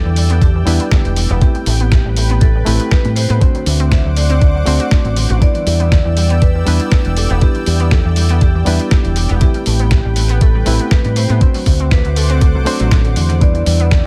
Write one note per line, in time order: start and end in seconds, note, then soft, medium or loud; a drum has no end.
0.00 0.64 G3 medium
0.00 0.64 B3 medium
0.00 0.64 D4 medium
0.00 0.64 E4 medium
0.00 0.44 A4 medium
0.00 0.64 B4 medium
0.00 1.37 D5 medium
0.00 3.37 G5 medium
0.00 1.38 E6 medium
0.05 0.64 E2 medium
0.05 0.12 E3 medium
0.16 0.20 G3 medium
0.16 open hi-hat loud
0.30 0.35 B3 loud
0.30 closed hi-hat medium
0.42 0.50 D3 loud
0.42 1.13 G4 medium
0.42 kick loud
0.42 closed hi-hat medium
0.56 0.60 E3 medium
0.65 0.78 E2 loud
0.65 1.38 G3 loud
0.65 0.70 G3 medium
0.65 1.39 B3 medium
0.65 1.39 D4 medium
0.65 1.39 E4 medium
0.65 1.39 B4 loud
0.65 open hi-hat loud
0.80 0.87 B3 medium
0.80 closed hi-hat medium
0.91 0.95 D3 medium
0.91 kick loud
0.91 snare loud
0.91 closed hi-hat medium
1.05 1.26 E1 medium
1.05 1.12 E3 medium
1.05 closed hi-hat soft
1.16 1.20 G3 medium
1.16 open hi-hat loud
1.30 1.40 E1 loud
1.30 1.35 B3 loud
1.30 closed hi-hat soft
1.41 1.47 E3 medium
1.41 2.63 A3 medium
1.41 2.64 C4 medium
1.41 2.64 E4 medium
1.41 2.45 G4 medium
1.41 2.64 G4 medium
1.41 3.40 B4 medium
1.41 2.64 B4 medium
1.41 kick loud
1.41 closed hi-hat medium
1.55 1.60 G3 medium
1.55 closed hi-hat soft
1.66 2.01 A1 loud
1.66 1.70 A3 medium
1.66 open hi-hat loud
1.80 1.85 B3 loud
1.80 closed hi-hat soft
1.92 1.95 E3 medium
1.92 kick loud
1.92 snare loud
1.92 closed hi-hat medium
2.05 2.63 A1 medium
2.05 2.12 G3 medium
2.17 2.20 A3 medium
2.17 open hi-hat loud
2.30 2.35 B3 loud
2.30 closed hi-hat soft
2.41 2.50 E3 loud
2.41 2.88 A4 medium
2.41 kick loud
2.41 closed hi-hat medium
2.56 2.60 G3 medium
2.65 2.78 A1 medium
2.65 3.38 A3 loud
2.65 2.70 A3 medium
2.65 3.38 C4 medium
2.65 3.39 E4 medium
2.65 3.39 G4 medium
2.65 3.39 B4 loud
2.65 open hi-hat loud
2.80 2.87 B3 medium
2.80 closed hi-hat medium
2.91 2.95 E3 medium
2.91 3.02 B4 medium
2.91 kick loud
2.91 snare loud
2.91 closed hi-hat medium
3.05 3.26 A2 medium
3.05 3.12 G3 medium
3.05 closed hi-hat soft
3.16 3.20 A3 medium
3.16 3.93 C5 loud
3.16 open hi-hat loud
3.30 3.40 A2 loud
3.30 3.35 B3 loud
3.30 closed hi-hat soft
3.40 3.47 D3 medium
3.40 4.63 A3 medium
3.40 4.63 C4 medium
3.40 4.64 D4 medium
3.40 4.64 F#4 medium
3.40 5.39 C5 medium
3.40 4.64 C5 medium
3.40 5.39 F#5 medium
3.40 5.39 D6 medium
3.40 kick loud
3.40 closed hi-hat medium
3.55 3.60 F#3 medium
3.55 closed hi-hat soft
3.66 4.01 D2 loud
3.66 3.70 A3 medium
3.66 open hi-hat loud
3.80 3.85 C4 loud
3.80 closed hi-hat soft
3.92 3.95 D3 medium
3.92 4.03 E5 loud
3.92 kick loud
3.92 snare loud
3.92 closed hi-hat medium
4.05 4.64 D2 medium
4.05 4.12 F#3 medium
4.17 4.20 A3 medium
4.17 5.13 D5 loud
4.17 open hi-hat loud
4.30 4.35 C4 loud
4.30 closed hi-hat soft
4.42 4.50 D3 loud
4.42 kick loud
4.42 closed hi-hat medium
4.55 4.60 F#3 medium
4.65 4.78 D2 medium
4.65 5.38 A3 loud
4.65 5.38 C4 medium
4.65 4.70 C4 medium
4.65 5.39 D4 medium
4.65 5.39 F#4 medium
4.65 5.39 C5 loud
4.65 open hi-hat loud
4.80 4.85 F#4 loud
4.80 closed hi-hat soft
4.91 4.95 D4 medium
4.91 kick loud
4.91 snare loud
4.91 closed hi-hat medium
5.05 5.26 A1 medium
5.05 5.08 F#3 medium
5.05 closed hi-hat soft
5.16 5.25 D3 medium
5.16 open hi-hat loud
5.30 5.40 A1 loud
5.30 5.33 F#4 medium
5.30 closed hi-hat soft
5.40 5.47 D3 medium
5.40 6.63 G3 medium
5.40 6.63 B3 medium
5.40 6.64 D4 medium
5.40 6.64 E4 medium
5.40 6.64 B4 medium
5.40 9.38 D5 medium
5.40 6.45 D5 loud
5.40 11.38 G5 medium
5.40 9.38 E6 medium
5.40 kick loud
5.40 closed hi-hat medium
5.55 5.60 E3 medium
5.55 closed hi-hat soft
5.67 6.01 E2 loud
5.67 5.70 G3 medium
5.67 open hi-hat loud
5.80 5.85 B3 loud
5.80 closed hi-hat soft
5.92 5.95 D3 medium
5.92 kick loud
5.92 snare loud
5.92 closed hi-hat medium
6.05 6.64 E2 medium
6.05 6.12 E3 medium
6.17 6.20 G3 medium
6.17 open hi-hat loud
6.30 6.35 B3 loud
6.30 closed hi-hat soft
6.42 6.47 G3 medium
6.42 7.13 B4 loud
6.42 kick loud
6.42 closed hi-hat medium
6.56 6.60 E3 medium
6.65 6.78 E2 medium
6.65 7.38 G3 loud
6.65 6.70 G3 medium
6.65 7.39 B3 medium
6.65 7.39 D4 medium
6.65 7.39 E4 medium
6.65 7.39 B4 loud
6.65 open hi-hat loud
6.80 6.87 B3 medium
6.80 closed hi-hat medium
6.92 6.95 D3 medium
6.92 kick loud
6.92 snare loud
6.92 closed hi-hat medium
7.05 7.26 E1 medium
7.05 7.12 E3 medium
7.05 closed hi-hat soft
7.17 7.20 G3 medium
7.17 7.43 A4 medium
7.17 open hi-hat loud
7.30 7.40 E1 loud
7.30 7.35 B3 loud
7.30 closed hi-hat soft
7.41 7.47 D3 medium
7.41 8.63 G3 medium
7.41 8.64 B3 medium
7.41 8.64 D4 medium
7.41 8.64 E4 medium
7.41 7.94 G4 medium
7.41 8.64 B4 medium
7.41 kick loud
7.41 closed hi-hat medium
7.55 7.60 E3 medium
7.55 closed hi-hat soft
7.66 8.02 E2 loud
7.66 7.70 G3 medium
7.66 open hi-hat loud
7.80 7.85 B3 loud
7.80 closed hi-hat soft
7.91 7.95 D3 medium
7.91 8.43 A4 medium
7.91 kick loud
7.91 snare loud
7.91 closed hi-hat medium
8.05 8.64 E2 medium
8.05 8.12 E3 medium
8.16 8.20 G3 medium
8.16 open hi-hat loud
8.29 8.35 B3 loud
8.29 closed hi-hat medium
8.41 8.47 G3 medium
8.41 9.13 G4 medium
8.41 kick loud
8.41 closed hi-hat medium
8.55 8.60 E3 medium
8.65 8.78 E2 medium
8.65 9.38 G3 loud
8.65 8.70 G3 medium
8.65 9.38 B3 medium
8.65 9.39 D4 medium
8.65 9.39 E4 medium
8.65 9.39 B4 loud
8.65 open hi-hat loud
8.80 8.87 B3 medium
8.80 closed hi-hat medium
8.91 8.95 D3 medium
8.91 kick loud
8.91 snare loud
8.91 closed hi-hat medium
9.05 9.26 E1 medium
9.05 9.12 E3 medium
9.05 closed hi-hat soft
9.16 9.20 G3 medium
9.16 open hi-hat loud
9.29 9.40 E1 loud
9.29 9.34 B3 loud
9.29 closed hi-hat soft
9.40 9.47 E3 medium
9.40 10.63 A3 medium
9.40 10.63 C4 medium
9.40 10.64 E4 medium
9.40 10.45 G4 medium
9.40 10.64 G4 medium
9.40 11.40 B4 medium
9.40 10.64 B4 medium
9.40 kick loud
9.40 closed hi-hat medium
9.54 9.60 G3 medium
9.54 closed hi-hat soft
9.66 10.02 A1 medium
9.66 9.70 A3 medium
9.66 open hi-hat loud
9.79 9.85 B3 medium
9.79 closed hi-hat soft
9.91 9.95 E3 medium
9.91 kick loud
9.91 snare loud
9.91 closed hi-hat medium
10.05 10.64 A1 medium
10.05 10.12 G3 medium
10.16 10.20 A3 medium
10.16 open hi-hat loud
10.29 10.35 B3 loud
10.29 closed hi-hat medium
10.41 10.47 A3 medium
10.41 10.93 A4 loud
10.41 kick loud
10.41 closed hi-hat medium
10.55 10.60 G3 medium
10.66 10.78 A1 medium
10.66 11.38 A3 loud
10.66 10.70 A3 medium
10.66 11.39 C4 medium
10.66 11.39 E4 medium
10.66 11.39 G4 medium
10.66 11.39 B4 loud
10.66 open hi-hat loud
10.79 10.87 B3 medium
10.79 closed hi-hat medium
10.91 10.95 E3 medium
10.91 11.17 B4 loud
10.91 kick loud
10.91 snare loud
10.91 closed hi-hat medium
11.05 11.26 A2 medium
11.05 11.12 G3 medium
11.05 closed hi-hat soft
11.16 11.20 A3 medium
11.16 11.88 C5 loud
11.16 open hi-hat loud
11.30 11.40 A2 medium
11.30 11.35 B3 loud
11.30 closed hi-hat soft
11.40 11.47 D3 medium
11.40 12.63 A3 medium
11.40 12.63 C4 medium
11.40 12.64 D4 medium
11.40 12.64 F#4 medium
11.40 13.40 C5 medium
11.40 12.64 C5 medium
11.40 13.40 F#5 medium
11.40 13.40 D6 medium
11.40 kick loud
11.40 closed hi-hat medium
11.54 11.60 F#3 medium
11.54 open hi-hat medium
11.66 12.01 D2 loud
11.66 11.70 A3 medium
11.66 kick medium
11.66 open hi-hat loud
11.80 11.85 C4 loud
11.80 closed hi-hat soft
11.91 11.95 D3 medium
11.91 12.09 B4 loud
11.91 kick loud
11.91 snare loud
11.91 closed hi-hat medium
12.05 12.54 D2 medium
12.05 12.12 F#3 medium
12.05 closed hi-hat soft
12.10 12.17 B4 medium
12.16 12.20 A3 medium
12.16 13.13 A4 medium
12.16 open hi-hat loud
12.30 12.35 C4 loud
12.30 closed hi-hat medium
12.41 12.47 A3 medium
12.41 kick loud
12.41 closed hi-hat medium
12.55 12.65 C2 medium
12.55 12.60 F#3 medium
12.65 12.75 F#3 medium
12.65 13.38 A3 medium
12.65 13.38 C4 medium
12.65 13.39 D4 medium
12.65 13.39 F#4 medium
12.65 13.39 C5 loud
12.65 open hi-hat loud
12.80 13.14 A1 loud
12.80 12.87 F#3 loud
12.80 closed hi-hat medium
12.91 13.00 F#3 medium
12.91 kick loud
12.91 snare loud
12.91 closed hi-hat medium
13.05 13.08 D3 medium
13.05 closed hi-hat soft
13.16 13.64 E2 medium
13.16 13.25 D3 medium
13.16 open hi-hat loud
13.30 13.37 D3 medium
13.30 closed hi-hat soft
13.40 13.47 D3 medium
13.40 14.06 G3 medium
13.40 14.06 B3 medium
13.40 14.06 D4 medium
13.40 14.06 E4 medium
13.40 14.06 B4 medium
13.40 14.06 D5 medium
13.40 14.06 D5 loud
13.40 14.06 G5 medium
13.40 14.06 E6 medium
13.40 kick loud
13.40 closed hi-hat medium
13.55 13.60 E3 medium
13.55 closed hi-hat soft
13.66 14.01 E2 loud
13.66 13.70 G3 medium
13.66 open hi-hat loud
13.80 13.85 B3 loud
13.80 closed hi-hat soft
13.91 13.95 D3 medium
13.91 kick loud
13.91 snare loud
13.91 closed hi-hat medium